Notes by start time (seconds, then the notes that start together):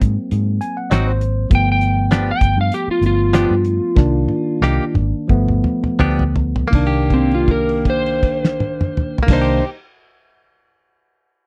Already playing: F#3 A#3 C4
0.01 G#2, kick, closed hi-hat
0.31 G#2, closed hi-hat
0.61 G#5, closed hi-hat
0.77 F#5
0.90 G#1 F#3 C4 D#4 F#4 D#5, snare, closed hi-hat
1.07 C5
1.21 closed hi-hat
1.50 G1 F3 A3 B3, kick, closed hi-hat
1.55 G5
1.72 G5
1.81 closed hi-hat
2.11 F3 B3 D4 G4, snare, closed hi-hat
2.31 G5
2.41 G1, kick, closed hi-hat
2.57 G2 F5
2.72 G4, closed hi-hat
2.88 F4, muted fingered electric bass stroke
3.01 G1 F3 A3 B3, closed hi-hat
3.06 F4
3.33 F3 B3 D4 G4, snare, closed hi-hat
3.50 G2
3.65 closed hi-hat
3.95 C2 D#3 A#3 D4, kick, snare
4.29 high tom
4.61 C2 A#3 D#4 G4, snare
4.94 G#1, mid tom
5.28 G1 F3 A3 B3, kick
5.48 mid tom
5.64 mid tom
5.84 mid tom
5.99 D2 F3 B3 D4 G4, floor tom
6.19 floor tom
6.36 floor tom
6.56 floor tom
6.68 D#3 A#3
6.73 C2 A#3 D4, kick, crash
6.87 G4
7.10 C4, kick, crash
7.31 F4, crash
7.48 A#4, kick, crash
7.69 crash
7.85 kick, crash
7.90 C5
8.06 crash
8.23 kick, crash
8.45 snare
8.60 high tom
8.81 mid tom
8.97 mid tom
9.18 floor tom
9.23 D#3 A#3
9.28 C2 A#3 D4, kick, snare, crash
9.33 D#4 C5
9.41 G4